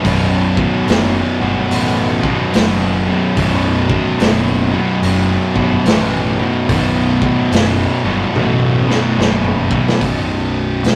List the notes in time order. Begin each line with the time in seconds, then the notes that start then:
0.04 B0 B1 F#2 B2, kick, open hi-hat
0.56 B1 F#2 B2, kick
0.87 F#1 B1 F#2 B2, snare, open hi-hat
1.39 G1 B1 F#2 B2
1.69 A1 B1 F#2 B2, open hi-hat
2.22 B1 F#2 B2, kick
2.53 F#1 B1 F#2 B2, snare, open hi-hat
3.06 B1 F#2 B2
3.37 B0 B1 F#2 B2, kick, open hi-hat
3.89 B1 F#2 B2, kick
4.19 F#1 B1 F#2 B2, snare, open hi-hat
4.72 B1 F#2 B2
5.02 F#1 B1 F#2 B2, open hi-hat
5.55 G1 B1 F#2 B2, kick
5.86 A1 B1 F#2 B2, snare, open hi-hat
6.38 B1 F#2 B2
6.69 B0 B1 F#2 B2, kick, open hi-hat
7.21 B1 F#2 B2, kick
7.52 F#1 B1 F#2 B2, snare, open hi-hat
8.04 G1 B1 F#2 B2
8.35 A1 B1 F#2 B2, high tom
8.88 B1 F#2 B2, snare
9.18 F#1 B1 F#2 B2, snare
9.44 mid tom
9.70 B1 F#2 B2, kick
9.88 snare
10.00 B0 B1 F#2 B2, kick, open hi-hat
10.84 E1, snare, open hi-hat